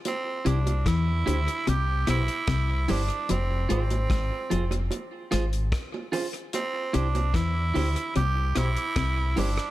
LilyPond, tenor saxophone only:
\new Staff \with { instrumentName = "Tenor saxophone" } { \time 4/4 \key c \major \tempo 4 = 74 c'8 d'8 e'4 g'8 e'4 d'8 | c'8 c'4. r2 | c'8 d'8 e'4 g'8 e'4 d'8 | }